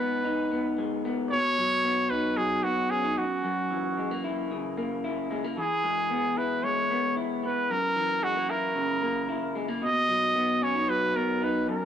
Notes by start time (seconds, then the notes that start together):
Already playing: G#2 D#4 B4
0.00 B3
0.24 D#4
0.52 B3
0.78 G#3
1.05 B3
1.31 B2 C#5
1.58 F#3
1.85 B3
2.10 D#4 B4
2.37 F#3 G#4
2.64 B3 F#4
2.90 C#4 G#4
3.04 D#4
3.17 F#2 F#4
3.44 F#2
3.71 E3
3.98 G#3
4.11 A#3
4.24 E4
4.51 C#3
4.77 A#3
5.04 E4
5.31 G#3
5.44 A#3
5.57 E3 G#4
5.84 G#3
6.10 B3
6.37 E4 B4
6.64 G#3 C#5
6.91 B3
7.17 E4
7.43 B3 B4
7.70 F#2 A#4
7.96 E3
8.23 G#3 F#4
8.36 A#3
8.49 E4 A#4
8.75 C#3
9.02 A#3
9.29 E4
9.55 G#3
9.68 A#3
9.82 B2 D#5
10.08 F#3
10.35 B3
10.62 C#4 C#5
10.75 D#4
10.88 F#3 B4
11.15 B3 A#4
11.42 D#4 B4
11.68 F#2 A#4